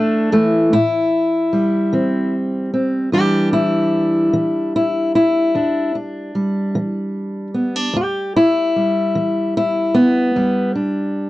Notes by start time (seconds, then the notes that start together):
Already playing: E3 A3 D4
0.32 E3 A3
0.73 A2 E4
1.53 G3
1.93 E3 C4
2.74 C4
3.12 E2 E3 G3 D4 G4
3.53 E4
4.33 E3
4.76 E4
5.15 E4
5.55 E2 D4
5.95 D4
6.35 G3
6.75 E3
7.54 B3
7.76 D4
7.94 E2 G4
8.36 E4
8.76 G3
9.15 E3
9.57 E4
9.94 B3
10.36 E2 G3
10.75 D4